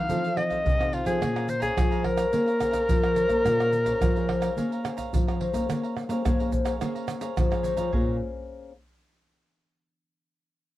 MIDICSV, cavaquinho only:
0, 0, Header, 1, 3, 480
1, 0, Start_track
1, 0, Key_signature, -5, "minor"
1, 0, Tempo, 559701
1, 1041, Time_signature, 4, 2, 24, 8
1, 9238, End_track
2, 0, Start_track
2, 0, Title_t, "Cavaquinho"
2, 0, Program_c, 0, 24
2, 73, Note_on_c, 0, 63, 49
2, 81, Note_on_c, 0, 69, 52
2, 87, Note_on_c, 0, 72, 55
2, 91, Note_on_c, 0, 77, 52
2, 188, Note_off_c, 0, 63, 0
2, 191, Note_off_c, 0, 69, 0
2, 194, Note_off_c, 0, 72, 0
2, 194, Note_off_c, 0, 77, 0
2, 204, Note_on_c, 0, 77, 58
2, 213, Note_on_c, 0, 72, 56
2, 219, Note_on_c, 0, 69, 50
2, 412, Note_off_c, 0, 77, 0
2, 421, Note_off_c, 0, 72, 0
2, 422, Note_on_c, 0, 77, 73
2, 427, Note_off_c, 0, 69, 0
2, 431, Note_on_c, 0, 72, 66
2, 437, Note_on_c, 0, 69, 51
2, 662, Note_off_c, 0, 77, 0
2, 666, Note_off_c, 0, 72, 0
2, 669, Note_off_c, 0, 69, 0
2, 677, Note_on_c, 0, 77, 66
2, 686, Note_on_c, 0, 72, 60
2, 694, Note_on_c, 0, 69, 56
2, 781, Note_off_c, 0, 69, 0
2, 785, Note_off_c, 0, 72, 0
2, 786, Note_on_c, 0, 63, 42
2, 789, Note_off_c, 0, 77, 0
2, 792, Note_on_c, 0, 69, 45
2, 795, Note_on_c, 0, 72, 50
2, 802, Note_on_c, 0, 77, 54
2, 887, Note_off_c, 0, 77, 0
2, 894, Note_off_c, 0, 72, 0
2, 897, Note_on_c, 0, 77, 82
2, 901, Note_off_c, 0, 69, 0
2, 904, Note_off_c, 0, 63, 0
2, 904, Note_on_c, 0, 72, 73
2, 912, Note_on_c, 0, 69, 63
2, 1019, Note_off_c, 0, 77, 0
2, 1023, Note_off_c, 0, 72, 0
2, 1027, Note_off_c, 0, 69, 0
2, 1038, Note_on_c, 0, 68, 49
2, 1043, Note_on_c, 0, 73, 44
2, 1050, Note_on_c, 0, 77, 45
2, 1055, Note_on_c, 0, 82, 52
2, 1150, Note_off_c, 0, 68, 0
2, 1151, Note_off_c, 0, 82, 0
2, 1152, Note_off_c, 0, 73, 0
2, 1156, Note_off_c, 0, 77, 0
2, 1161, Note_on_c, 0, 82, 68
2, 1171, Note_on_c, 0, 77, 64
2, 1177, Note_on_c, 0, 73, 56
2, 1261, Note_off_c, 0, 73, 0
2, 1265, Note_off_c, 0, 77, 0
2, 1266, Note_off_c, 0, 82, 0
2, 1371, Note_on_c, 0, 82, 73
2, 1383, Note_on_c, 0, 77, 69
2, 1388, Note_on_c, 0, 73, 59
2, 1496, Note_off_c, 0, 82, 0
2, 1502, Note_off_c, 0, 77, 0
2, 1505, Note_off_c, 0, 73, 0
2, 1510, Note_on_c, 0, 68, 52
2, 1517, Note_on_c, 0, 73, 53
2, 1521, Note_on_c, 0, 77, 55
2, 1526, Note_on_c, 0, 82, 54
2, 1624, Note_off_c, 0, 82, 0
2, 1626, Note_off_c, 0, 68, 0
2, 1629, Note_off_c, 0, 73, 0
2, 1631, Note_off_c, 0, 77, 0
2, 1635, Note_on_c, 0, 82, 69
2, 1646, Note_on_c, 0, 77, 59
2, 1653, Note_on_c, 0, 73, 46
2, 1737, Note_off_c, 0, 73, 0
2, 1740, Note_off_c, 0, 77, 0
2, 1744, Note_off_c, 0, 82, 0
2, 1856, Note_on_c, 0, 82, 63
2, 1862, Note_on_c, 0, 77, 65
2, 1869, Note_on_c, 0, 73, 50
2, 1979, Note_off_c, 0, 82, 0
2, 1982, Note_off_c, 0, 77, 0
2, 1985, Note_off_c, 0, 73, 0
2, 1989, Note_on_c, 0, 68, 52
2, 1997, Note_on_c, 0, 73, 49
2, 2003, Note_on_c, 0, 77, 56
2, 2006, Note_on_c, 0, 82, 55
2, 2101, Note_off_c, 0, 82, 0
2, 2106, Note_off_c, 0, 68, 0
2, 2109, Note_off_c, 0, 73, 0
2, 2112, Note_on_c, 0, 82, 70
2, 2113, Note_off_c, 0, 77, 0
2, 2123, Note_on_c, 0, 77, 55
2, 2129, Note_on_c, 0, 73, 54
2, 2315, Note_off_c, 0, 82, 0
2, 2325, Note_on_c, 0, 82, 77
2, 2327, Note_off_c, 0, 77, 0
2, 2334, Note_off_c, 0, 73, 0
2, 2337, Note_on_c, 0, 77, 69
2, 2344, Note_on_c, 0, 73, 55
2, 2574, Note_off_c, 0, 82, 0
2, 2579, Note_off_c, 0, 77, 0
2, 2583, Note_off_c, 0, 73, 0
2, 2591, Note_on_c, 0, 82, 64
2, 2603, Note_on_c, 0, 77, 62
2, 2606, Note_on_c, 0, 73, 47
2, 2695, Note_off_c, 0, 73, 0
2, 2697, Note_on_c, 0, 68, 47
2, 2701, Note_off_c, 0, 77, 0
2, 2704, Note_off_c, 0, 82, 0
2, 2705, Note_on_c, 0, 73, 45
2, 2711, Note_on_c, 0, 77, 49
2, 2714, Note_on_c, 0, 82, 51
2, 2802, Note_off_c, 0, 82, 0
2, 2811, Note_off_c, 0, 77, 0
2, 2812, Note_on_c, 0, 82, 73
2, 2819, Note_off_c, 0, 73, 0
2, 2820, Note_off_c, 0, 68, 0
2, 2821, Note_on_c, 0, 77, 60
2, 2829, Note_on_c, 0, 73, 64
2, 2937, Note_off_c, 0, 82, 0
2, 2942, Note_off_c, 0, 77, 0
2, 2946, Note_off_c, 0, 73, 0
2, 2949, Note_on_c, 0, 68, 47
2, 2956, Note_on_c, 0, 73, 48
2, 2960, Note_on_c, 0, 77, 53
2, 2965, Note_on_c, 0, 82, 55
2, 3066, Note_off_c, 0, 68, 0
2, 3069, Note_off_c, 0, 73, 0
2, 3069, Note_off_c, 0, 82, 0
2, 3071, Note_off_c, 0, 77, 0
2, 3079, Note_on_c, 0, 82, 65
2, 3086, Note_on_c, 0, 77, 68
2, 3095, Note_on_c, 0, 73, 62
2, 3178, Note_off_c, 0, 73, 0
2, 3179, Note_off_c, 0, 77, 0
2, 3180, Note_off_c, 0, 82, 0
2, 3299, Note_on_c, 0, 82, 69
2, 3306, Note_on_c, 0, 77, 68
2, 3315, Note_on_c, 0, 73, 54
2, 3420, Note_off_c, 0, 82, 0
2, 3424, Note_off_c, 0, 77, 0
2, 3429, Note_off_c, 0, 73, 0
2, 3435, Note_on_c, 0, 68, 51
2, 3440, Note_on_c, 0, 73, 53
2, 3446, Note_on_c, 0, 77, 58
2, 3450, Note_on_c, 0, 82, 59
2, 3549, Note_off_c, 0, 68, 0
2, 3551, Note_off_c, 0, 73, 0
2, 3554, Note_off_c, 0, 77, 0
2, 3556, Note_off_c, 0, 82, 0
2, 3565, Note_on_c, 0, 82, 65
2, 3573, Note_on_c, 0, 77, 60
2, 3581, Note_on_c, 0, 73, 54
2, 3665, Note_off_c, 0, 73, 0
2, 3670, Note_off_c, 0, 77, 0
2, 3671, Note_off_c, 0, 82, 0
2, 3780, Note_on_c, 0, 82, 68
2, 3790, Note_on_c, 0, 77, 60
2, 3795, Note_on_c, 0, 73, 56
2, 3901, Note_off_c, 0, 82, 0
2, 3907, Note_off_c, 0, 77, 0
2, 3909, Note_off_c, 0, 73, 0
2, 3920, Note_on_c, 0, 68, 49
2, 3930, Note_on_c, 0, 73, 46
2, 3934, Note_on_c, 0, 77, 53
2, 3940, Note_on_c, 0, 82, 48
2, 4032, Note_off_c, 0, 68, 0
2, 4036, Note_off_c, 0, 73, 0
2, 4037, Note_off_c, 0, 82, 0
2, 4039, Note_off_c, 0, 77, 0
2, 4047, Note_on_c, 0, 82, 67
2, 4055, Note_on_c, 0, 77, 57
2, 4064, Note_on_c, 0, 73, 52
2, 4251, Note_off_c, 0, 82, 0
2, 4260, Note_off_c, 0, 77, 0
2, 4261, Note_on_c, 0, 82, 71
2, 4266, Note_off_c, 0, 73, 0
2, 4270, Note_on_c, 0, 77, 59
2, 4276, Note_on_c, 0, 73, 53
2, 4502, Note_off_c, 0, 82, 0
2, 4507, Note_off_c, 0, 77, 0
2, 4510, Note_off_c, 0, 73, 0
2, 4524, Note_on_c, 0, 82, 64
2, 4530, Note_on_c, 0, 77, 52
2, 4541, Note_on_c, 0, 73, 47
2, 4625, Note_off_c, 0, 73, 0
2, 4631, Note_on_c, 0, 68, 49
2, 4633, Note_off_c, 0, 77, 0
2, 4634, Note_off_c, 0, 82, 0
2, 4635, Note_on_c, 0, 73, 50
2, 4643, Note_on_c, 0, 77, 52
2, 4644, Note_on_c, 0, 82, 54
2, 4736, Note_off_c, 0, 82, 0
2, 4745, Note_off_c, 0, 77, 0
2, 4746, Note_on_c, 0, 82, 73
2, 4747, Note_off_c, 0, 68, 0
2, 4749, Note_off_c, 0, 73, 0
2, 4755, Note_on_c, 0, 77, 65
2, 4760, Note_on_c, 0, 73, 61
2, 4865, Note_off_c, 0, 82, 0
2, 4869, Note_off_c, 0, 77, 0
2, 4872, Note_off_c, 0, 73, 0
2, 4884, Note_on_c, 0, 68, 41
2, 4889, Note_on_c, 0, 73, 47
2, 4894, Note_on_c, 0, 77, 54
2, 4900, Note_on_c, 0, 82, 51
2, 4992, Note_off_c, 0, 82, 0
2, 4994, Note_off_c, 0, 68, 0
2, 4996, Note_off_c, 0, 73, 0
2, 4999, Note_off_c, 0, 77, 0
2, 5002, Note_on_c, 0, 82, 71
2, 5008, Note_on_c, 0, 77, 60
2, 5017, Note_on_c, 0, 73, 52
2, 5104, Note_off_c, 0, 73, 0
2, 5107, Note_off_c, 0, 77, 0
2, 5109, Note_off_c, 0, 82, 0
2, 5222, Note_on_c, 0, 82, 81
2, 5232, Note_on_c, 0, 77, 62
2, 5239, Note_on_c, 0, 73, 59
2, 5343, Note_off_c, 0, 82, 0
2, 5348, Note_off_c, 0, 77, 0
2, 5351, Note_off_c, 0, 73, 0
2, 5358, Note_on_c, 0, 68, 57
2, 5364, Note_on_c, 0, 73, 61
2, 5368, Note_on_c, 0, 77, 49
2, 5375, Note_on_c, 0, 82, 55
2, 5471, Note_off_c, 0, 68, 0
2, 5472, Note_off_c, 0, 82, 0
2, 5474, Note_off_c, 0, 73, 0
2, 5476, Note_off_c, 0, 77, 0
2, 5482, Note_on_c, 0, 82, 67
2, 5493, Note_on_c, 0, 77, 58
2, 5499, Note_on_c, 0, 73, 54
2, 5581, Note_off_c, 0, 73, 0
2, 5585, Note_off_c, 0, 77, 0
2, 5585, Note_off_c, 0, 82, 0
2, 5700, Note_on_c, 0, 82, 66
2, 5708, Note_on_c, 0, 77, 58
2, 5717, Note_on_c, 0, 73, 56
2, 5822, Note_off_c, 0, 82, 0
2, 5826, Note_off_c, 0, 77, 0
2, 5830, Note_off_c, 0, 73, 0
2, 5839, Note_on_c, 0, 68, 48
2, 5843, Note_on_c, 0, 73, 60
2, 5851, Note_on_c, 0, 77, 53
2, 5853, Note_on_c, 0, 82, 53
2, 5951, Note_off_c, 0, 68, 0
2, 5951, Note_off_c, 0, 82, 0
2, 5953, Note_off_c, 0, 73, 0
2, 5957, Note_off_c, 0, 77, 0
2, 5962, Note_on_c, 0, 82, 66
2, 5971, Note_on_c, 0, 77, 47
2, 5978, Note_on_c, 0, 73, 54
2, 6172, Note_off_c, 0, 82, 0
2, 6179, Note_off_c, 0, 77, 0
2, 6183, Note_on_c, 0, 82, 69
2, 6187, Note_off_c, 0, 73, 0
2, 6189, Note_on_c, 0, 77, 66
2, 6197, Note_on_c, 0, 73, 63
2, 6423, Note_off_c, 0, 82, 0
2, 6427, Note_off_c, 0, 77, 0
2, 6430, Note_off_c, 0, 73, 0
2, 6437, Note_on_c, 0, 82, 62
2, 6445, Note_on_c, 0, 77, 61
2, 6454, Note_on_c, 0, 73, 54
2, 6544, Note_off_c, 0, 73, 0
2, 6545, Note_on_c, 0, 68, 57
2, 6548, Note_off_c, 0, 77, 0
2, 6550, Note_off_c, 0, 82, 0
2, 6554, Note_on_c, 0, 73, 56
2, 6558, Note_on_c, 0, 77, 49
2, 6563, Note_on_c, 0, 82, 51
2, 6650, Note_off_c, 0, 82, 0
2, 6656, Note_off_c, 0, 77, 0
2, 6660, Note_on_c, 0, 82, 82
2, 6664, Note_off_c, 0, 68, 0
2, 6664, Note_off_c, 0, 73, 0
2, 6667, Note_on_c, 0, 77, 73
2, 6674, Note_on_c, 0, 73, 70
2, 6782, Note_off_c, 0, 82, 0
2, 6785, Note_off_c, 0, 77, 0
2, 6789, Note_off_c, 0, 73, 0
2, 6794, Note_on_c, 0, 68, 66
2, 6798, Note_on_c, 0, 73, 70
2, 6802, Note_on_c, 0, 77, 70
2, 6808, Note_on_c, 0, 82, 76
2, 6991, Note_off_c, 0, 68, 0
2, 6992, Note_off_c, 0, 73, 0
2, 6994, Note_off_c, 0, 77, 0
2, 6997, Note_off_c, 0, 82, 0
2, 9238, End_track
3, 0, Start_track
3, 0, Title_t, "Muted cavaquinho strokes"
3, 1268, Note_on_c, 9, 29, 41
3, 1354, Note_off_c, 9, 29, 0
3, 1743, Note_on_c, 9, 29, 42
3, 1829, Note_off_c, 9, 29, 0
3, 3185, Note_on_c, 9, 29, 41
3, 3270, Note_off_c, 9, 29, 0
3, 3674, Note_on_c, 9, 29, 44
3, 3760, Note_off_c, 9, 29, 0
3, 5111, Note_on_c, 9, 29, 41
3, 5197, Note_off_c, 9, 29, 0
3, 5591, Note_on_c, 9, 29, 44
3, 5677, Note_off_c, 9, 29, 0
3, 9238, End_track
0, 0, End_of_file